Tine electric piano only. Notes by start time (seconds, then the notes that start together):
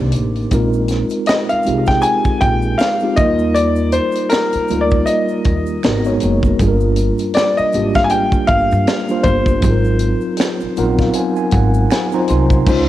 0.52 G#3 C4 D#4 F4 A#4
1.65 G#3 C4 D#4 F4 G4
1.73 G#4
3.02 G#3 C4 D#4 F4 G4
3.18 F3 A#3 D#4 F4 A#4
3.25 G3
4.69 G3 A#3 D#4 F4 A#4
5.83 G#3 B3 D#4 F#4 A#4
6.05 G#3 B3 D#4 F#4 C#5
6.60 G3 A#3 D4 F4 G#4
6.68 A#4
7.73 G3 A#3 D4 F4 G4
9.10 G3 A#3 D4 F4 C5
9.63 F#3 C4 D#4 F4 G#4
9.71 A#4
10.77 F#3 B3 D#4 F4 A#4 F#5
10.84 C4
11.00 F5
11.15 G#5
11.37 G#5
11.53 F#5
11.91 G#5
12.14 F#3 C4 D#4 F4 C5 A#5
12.29 C6
12.67 G#3 C#4 D#4 F4 C5